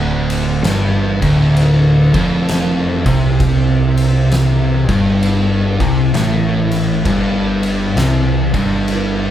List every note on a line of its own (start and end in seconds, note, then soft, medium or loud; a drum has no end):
0.00 0.61 D1 medium
0.00 0.64 D2 loud
0.30 ride medium
0.64 1.18 G1 medium
0.64 1.20 G2 loud
0.64 snare loud
0.64 ride loud
1.22 2.10 D1 medium
1.22 2.12 D2 loud
1.22 kick loud
1.22 ride medium
1.57 ride loud
2.14 3.02 F1 loud
2.14 3.04 F2 loud
2.14 kick loud
2.14 ride medium
2.49 snare loud
2.49 ride loud
3.06 4.85 C2 loud
3.06 4.89 C3 loud
3.06 kick loud
3.06 ride medium
3.40 kick loud
3.40 ride loud
3.97 ride medium
4.31 snare loud
4.31 ride loud
4.89 5.76 G1 loud
4.89 5.78 G2 loud
4.89 kick loud
4.89 ride medium
5.23 ride loud
5.80 6.12 C2 loud
5.80 6.13 C3 loud
5.80 kick loud
5.80 ride medium
6.14 7.01 A1 medium
6.14 7.04 A2 loud
6.14 snare loud
6.14 ride medium
6.71 ride medium
7.05 7.92 G1 loud
7.05 7.95 G2 loud
7.05 kick loud
7.05 ride loud
7.63 ride medium
7.96 8.50 C2 loud
7.96 8.52 C3 loud
7.96 snare loud
7.96 ride loud
8.53 9.31 G1 medium
8.53 9.31 G2 loud
8.53 kick loud
8.53 ride medium
8.88 ride loud